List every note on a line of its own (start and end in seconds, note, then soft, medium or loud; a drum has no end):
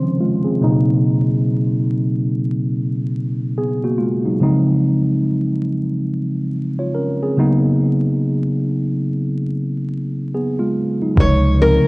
0.00 0.62 D#3 medium
0.00 0.18 F3 soft
0.00 0.45 C4 medium
0.00 0.18 C#4 medium
0.00 1.09 C5 medium
0.20 0.45 G#3 medium
0.20 0.44 F4 medium
0.44 0.85 C4 soft
0.44 0.85 G#4 medium
0.61 2.10 B2 medium
0.61 2.09 C#3 medium
0.61 2.09 F#3 medium
0.61 2.09 A#3 medium
0.61 2.10 D#4 medium
3.58 3.82 B3 medium
3.58 3.82 G#4 medium
3.84 3.99 A#3 medium
3.84 3.99 F#4 medium
3.98 4.24 G#3 medium
3.98 4.23 F4 medium
4.26 4.66 F#3 soft
4.26 4.42 D#4 soft
4.40 5.89 C#3 medium
4.40 5.89 F3 medium
4.40 5.89 G#3 medium
4.40 5.90 C4 medium
4.40 5.90 D#4 medium
6.79 6.95 F4 soft
6.79 6.94 C#5 medium
6.94 7.20 C#4 medium
6.94 7.19 A#4 medium
7.23 7.62 C4 soft
7.23 7.62 G#4 medium
7.37 8.85 C#3 medium
7.37 8.85 F#3 medium
7.37 8.85 A#3 medium
7.37 8.86 B3 medium
7.37 8.86 D#4 medium
10.34 10.59 B3 medium
10.34 10.58 G#4 medium
10.59 10.99 G#3 medium
10.59 10.99 F4 medium
11.02 11.42 F#3 soft
11.02 11.17 D#4 medium
11.16 11.78 C#2 loud
11.16 11.55 C3 medium
11.16 11.54 C#3 medium
11.16 11.54 F3 medium
11.16 11.55 G#3 medium
11.16 11.55 D#4 medium
11.16 kick loud
11.20 11.61 C#5 loud
11.60 11.88 C#3 medium
11.60 11.88 F3 medium
11.60 11.88 G#3 medium
11.60 11.88 C4 medium
11.60 11.88 D#4 medium
11.60 11.88 A#4 medium